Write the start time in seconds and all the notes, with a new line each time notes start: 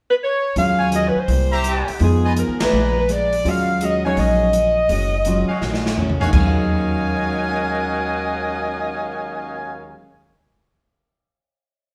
0.10 B4
0.24 C#5
0.56 D#2 D#3 F#3 G#3 C#4 F4 F#4 F5, kick, open hi-hat
0.79 C#5 F5 G#5
0.92 D#3 G#3 C#4 F#4 D#5, closed hi-hat
1.08 B4
1.16 muted upright bass stroke
1.20 C5
1.28 C2 C3 G3 A#3 E4, kick, open hi-hat
1.52 G4 C5 E5 A#5
1.63 C3 G3 A#3 E4, closed hi-hat
1.67 G4
1.88 muted upright bass stroke, open hi-hat
1.99 F2 F3 G#3 B3 D#4 F4 G#4, kick, open hi-hat
2.03 G#4
2.24 F4 B4 D#5 G#5
2.37 F3 B3 D#4 G#4 A#4, closed hi-hat
2.48 D#2
2.60 A1 G#4 B4 D5 A#5, snare, ride
2.73 A#1 A#2 G#3 B3 D4
2.98 B4
3.09 A#2 G#3 B3 D4 D5, closed hi-hat
3.33 open hi-hat
3.44 D#2 D#3 F#3 G#3 C#4 F4 F#4, kick, open hi-hat
3.48 F5
3.81 D#3 G#3 C#4 F#4 D#5, closed hi-hat
4.04 F#3 G#3 C#4 D#4 F#4 C#5 F5 G#5
4.17 A#1 D#3 G#3 C#4 F#4 D#5, kick, open hi-hat
4.53 D#3 G#3 C#4 F#4, closed hi-hat
4.89 F#1 D#3 G#3 C#4 F#4, kick, open hi-hat
5.25 D#3 F#3 G#3 C#4 F4 F#4, closed hi-hat
5.48 F#4 C#5 F5 G#5, muted upright bass stroke
5.61 A#1 D#3 G#3 C#4 F#4, snare
5.74 snare
5.86 snare
5.97 D#3 G#3 C#4 F#4, floor tom
6.09 floor tom
6.20 D#2 F#4 C#5 F5 G#5, floor tom
6.27 D#3
6.32 D#2 F#3 G#3 F#4 C#5 D#5 F5 G#5, kick, crash
6.36 G#3 C#4 A#4
6.42 C#4
6.47 F5